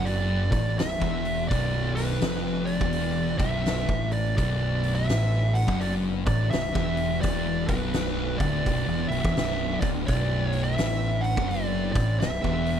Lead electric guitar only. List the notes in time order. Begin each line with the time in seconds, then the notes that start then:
0.05 D5
0.52 D5
0.79 E5
1.48 D5
1.95 B4
2.65 D5
3.38 E5
4.12 D5
4.37 D5
4.95 E5
5.54 F#5
5.80 D5
6.26 D5
6.51 E5
7.21 D5
7.66 B4
8.38 D5
9.09 E5
9.81 D5
10.07 D5
10.47 C#5
10.64 E5
11.21 F#5
11.49 D5
11.92 D5
12.20 E5